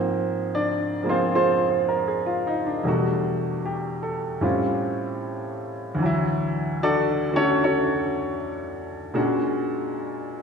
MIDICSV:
0, 0, Header, 1, 2, 480
1, 0, Start_track
1, 0, Tempo, 786370
1, 1748, Time_signature, 4, 2, 24, 8
1, 6361, End_track
2, 0, Start_track
2, 0, Title_t, "Grand piano"
2, 0, Program_c, 0, 0
2, 0, Control_c, 0, 64, 127
2, 0, Note_on_c, 0, 44, 55
2, 0, Note_on_c, 0, 53, 49
2, 0, Note_on_c, 0, 58, 50
2, 0, Note_on_c, 0, 60, 63
2, 334, Note_on_c, 0, 74, 70
2, 338, Note_on_c, 0, 62, 62
2, 617, Note_off_c, 0, 53, 0
2, 626, Note_on_c, 0, 53, 44
2, 634, Note_on_c, 0, 56, 42
2, 635, Note_off_c, 0, 58, 0
2, 640, Note_off_c, 0, 74, 0
2, 641, Note_off_c, 0, 62, 0
2, 644, Note_on_c, 0, 58, 45
2, 661, Note_off_c, 0, 60, 0
2, 666, Note_on_c, 0, 65, 61
2, 668, Note_on_c, 0, 68, 60
2, 668, Note_on_c, 0, 72, 67
2, 670, Note_on_c, 0, 60, 64
2, 799, Note_off_c, 0, 65, 0
2, 800, Note_off_c, 0, 68, 0
2, 800, Note_off_c, 0, 72, 0
2, 801, Note_off_c, 0, 60, 0
2, 826, Note_on_c, 0, 65, 62
2, 826, Note_on_c, 0, 72, 77
2, 828, Note_on_c, 0, 60, 62
2, 828, Note_on_c, 0, 68, 56
2, 1023, Note_off_c, 0, 72, 0
2, 1032, Note_on_c, 0, 72, 47
2, 1151, Note_on_c, 0, 70, 49
2, 1178, Note_off_c, 0, 72, 0
2, 1258, Note_off_c, 0, 68, 0
2, 1263, Note_off_c, 0, 65, 0
2, 1264, Note_off_c, 0, 60, 0
2, 1267, Note_on_c, 0, 68, 52
2, 1317, Note_off_c, 0, 70, 0
2, 1381, Note_on_c, 0, 65, 60
2, 1496, Note_off_c, 0, 68, 0
2, 1508, Note_on_c, 0, 63, 63
2, 1593, Note_off_c, 0, 65, 0
2, 1626, Note_on_c, 0, 62, 55
2, 1655, Note_off_c, 0, 63, 0
2, 1729, Note_on_c, 0, 40, 52
2, 1731, Note_off_c, 0, 44, 0
2, 1736, Note_on_c, 0, 47, 46
2, 1738, Note_on_c, 0, 55, 45
2, 1743, Note_off_c, 0, 53, 0
2, 1743, Note_off_c, 0, 62, 0
2, 1747, Note_on_c, 0, 57, 46
2, 1748, Note_off_c, 0, 56, 0
2, 1752, Note_off_c, 0, 58, 0
2, 1753, Note_on_c, 0, 62, 48
2, 1755, Control_c, 0, 64, 0
2, 1760, Note_on_c, 0, 66, 56
2, 1853, Control_c, 0, 64, 127
2, 2231, Note_on_c, 0, 67, 50
2, 2458, Note_on_c, 0, 69, 46
2, 2609, Note_off_c, 0, 67, 0
2, 2688, Note_off_c, 0, 55, 0
2, 2692, Note_on_c, 0, 45, 46
2, 2697, Note_on_c, 0, 55, 49
2, 2697, Note_on_c, 0, 60, 51
2, 2699, Note_off_c, 0, 40, 0
2, 2700, Note_on_c, 0, 61, 46
2, 2702, Note_off_c, 0, 47, 0
2, 2705, Note_on_c, 0, 65, 54
2, 2708, Note_off_c, 0, 57, 0
2, 2710, Note_off_c, 0, 62, 0
2, 2714, Note_off_c, 0, 66, 0
2, 2717, Control_c, 0, 64, 0
2, 2799, Note_off_c, 0, 69, 0
2, 2808, Control_c, 0, 64, 127
2, 3630, Note_on_c, 0, 38, 57
2, 3651, Note_on_c, 0, 52, 59
2, 3660, Note_off_c, 0, 45, 0
2, 3662, Note_off_c, 0, 55, 0
2, 3662, Note_off_c, 0, 60, 0
2, 3663, Note_off_c, 0, 61, 0
2, 3666, Note_off_c, 0, 65, 0
2, 3675, Control_c, 0, 64, 0
2, 3677, Note_on_c, 0, 54, 51
2, 3697, Note_on_c, 0, 64, 68
2, 3799, Control_c, 0, 64, 127
2, 4170, Note_on_c, 0, 66, 68
2, 4170, Note_on_c, 0, 74, 88
2, 4174, Note_on_c, 0, 62, 65
2, 4174, Note_on_c, 0, 69, 73
2, 4459, Note_on_c, 0, 50, 44
2, 4467, Note_off_c, 0, 66, 0
2, 4469, Note_on_c, 0, 57, 39
2, 4476, Note_on_c, 0, 66, 49
2, 4477, Note_off_c, 0, 74, 0
2, 4479, Note_off_c, 0, 62, 0
2, 4479, Note_off_c, 0, 69, 0
2, 4486, Note_off_c, 0, 66, 0
2, 4493, Note_on_c, 0, 73, 81
2, 4495, Note_on_c, 0, 66, 70
2, 4497, Note_on_c, 0, 61, 65
2, 4497, Note_on_c, 0, 69, 64
2, 4632, Note_off_c, 0, 73, 0
2, 4633, Note_off_c, 0, 66, 0
2, 4634, Note_off_c, 0, 61, 0
2, 4634, Note_off_c, 0, 69, 0
2, 4664, Note_on_c, 0, 61, 59
2, 4664, Note_on_c, 0, 69, 55
2, 4664, Note_on_c, 0, 73, 71
2, 4666, Note_on_c, 0, 66, 60
2, 5101, Note_off_c, 0, 61, 0
2, 5101, Note_off_c, 0, 69, 0
2, 5101, Note_off_c, 0, 73, 0
2, 5102, Note_off_c, 0, 66, 0
2, 5568, Note_off_c, 0, 38, 0
2, 5578, Note_off_c, 0, 52, 0
2, 5578, Note_on_c, 0, 46, 56
2, 5579, Note_off_c, 0, 50, 0
2, 5581, Note_on_c, 0, 56, 50
2, 5584, Note_off_c, 0, 57, 0
2, 5584, Note_on_c, 0, 61, 48
2, 5586, Note_on_c, 0, 66, 61
2, 5588, Note_on_c, 0, 62, 48
2, 5591, Note_off_c, 0, 54, 0
2, 5593, Control_c, 0, 64, 0
2, 5601, Note_off_c, 0, 64, 0
2, 5717, Control_c, 0, 64, 127
2, 6361, Note_off_c, 0, 46, 0
2, 6361, Note_off_c, 0, 56, 0
2, 6361, Note_off_c, 0, 61, 0
2, 6361, Note_off_c, 0, 62, 0
2, 6361, Note_off_c, 0, 66, 0
2, 6361, End_track
0, 0, End_of_file